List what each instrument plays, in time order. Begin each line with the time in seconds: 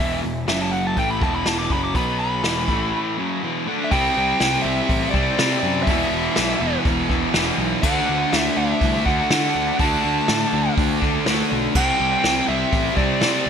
Already playing: distorted electric guitar E2 B2, lead electric guitar E5
0.00 picked electric bass E1, distorted electric guitar E3
0.22 picked electric bass E1, distorted electric guitar E2 B2, open hi-hat
0.47 picked electric bass F#1, distorted electric guitar F#2 C#3 F#3, lead electric guitar E5, snare, open hi-hat
0.62 lead electric guitar A5
0.72 lead electric guitar F#5, open hi-hat
0.87 lead electric guitar A5
0.96 picked electric bass A1, distorted electric guitar A2 E3 A3, lead electric guitar G5, kick, open hi-hat
1.10 lead electric guitar B5
1.21 picked electric bass E1, distorted electric guitar E2 B2 E3, lead electric guitar A5, kick, open hi-hat
1.35 lead electric guitar B5
1.46 lead electric guitar A5, snare, open hi-hat
1.59 lead electric guitar D6
1.70 picked electric bass F#1, distorted electric guitar F#2 C#3 F#3, lead electric guitar B5, kick, open hi-hat
1.84 lead electric guitar D6
1.95 picked electric bass B1, distorted electric guitar B2 F#3 B3, lead electric guitar B5, kick, open hi-hat
2.19 lead electric guitar B5, open hi-hat
2.43 picked electric bass E1, distorted electric guitar E2 B2 E3, snare, open hi-hat
2.68 picked electric bass A1, distorted electric guitar A2 E3 A3, kick, open hi-hat
3.18 distorted electric guitar F#2 C#3 F#3
3.44 distorted electric guitar E2 B2 E3
3.68 distorted electric guitar D3 A3 D4
3.84 lead electric guitar E5
3.91 picked electric bass C2, distorted electric guitar C3 G3 C4, lead electric guitar G5, kick, open hi-hat
4.17 picked electric bass C2
4.40 picked electric bass C2, snare, open hi-hat
4.62 picked electric bass C2, overdriven electric guitar C4, lead electric guitar E5
4.66 overdriven electric guitar C3 G3
4.89 picked electric bass A1, kick, open hi-hat
5.10 picked electric bass C2, distorted electric guitar C4, lead electric guitar D5, kick
5.15 distorted electric guitar C3 G3
5.38 distorted electric guitar C3 G3 C4, picked electric bass C3, snare, open hi-hat
5.59 picked electric bass F#2, lead electric guitar D5
5.83 distorted electric guitar E2, lead electric guitar E5, open hi-hat
5.87 picked electric bass E1, distorted electric guitar B2 E3, kick
6.12 picked electric bass E1
6.36 picked electric bass B1, snare, open hi-hat
6.60 picked electric bass E1, overdriven electric guitar B2 E3
6.65 overdriven electric guitar E2
6.85 picked electric bass E1, kick, open hi-hat
7.09 picked electric bass E1, distorted electric guitar E2 B2 E3, kick
7.33 picked electric bass E1, distorted electric guitar E2 B2 E3, snare, open hi-hat
7.58 picked electric bass B1
7.82 picked electric bass D2, distorted electric guitar D3 A3 D4, lead electric guitar F#5, kick, crash
8.09 picked electric bass D2
8.33 picked electric bass D2, snare, open hi-hat
8.38 lead electric guitar E5
8.57 picked electric bass D2, overdriven electric guitar A3 D4, lead electric guitar E5
8.61 overdriven electric guitar D3
8.81 picked electric bass C2, kick, open hi-hat
9.05 picked electric bass D2, distorted electric guitar D3 A3 D4, lead electric guitar F#5, kick
9.30 distorted electric guitar D3 A3 D4, picked electric bass D3, snare, open hi-hat
9.55 picked electric bass D2
9.78 picked electric bass D2, distorted electric guitar D3 A3 D4, lead electric guitar A5, kick, open hi-hat
10.05 picked electric bass D2
10.28 picked electric bass A2, snare, open hi-hat
10.53 picked electric bass D2, overdriven electric guitar D3 A3 D4
10.77 picked electric bass D2, kick, open hi-hat
11.00 picked electric bass D2, distorted electric guitar D3 A3 D4, kick
11.26 picked electric bass D2, distorted electric guitar D3 A3 D4, snare, open hi-hat
11.52 picked electric bass B1
11.75 picked electric bass C2, distorted electric guitar C3 G3 C4, lead electric guitar G5, kick, crash
12.00 picked electric bass C2
12.24 picked electric bass C2, snare, open hi-hat
12.48 picked electric bass C2, overdriven electric guitar C3 G3 C4, lead electric guitar E5
12.73 picked electric bass A1, kick, open hi-hat
12.96 picked electric bass C2, distorted electric guitar C3 G3 C4, lead electric guitar D5, kick
13.21 distorted electric guitar C3 G3 C4, picked electric bass C3, snare, open hi-hat
13.46 picked electric bass C2